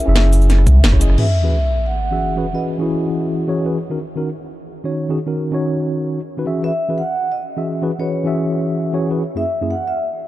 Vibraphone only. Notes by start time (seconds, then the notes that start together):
Already playing: E5
1.18 E5
1.86 F#5
2.55 D#5
6.64 E5
6.98 F#5
7.32 D#5
8.00 C#5
9.37 E5
9.71 F#5
9.88 E5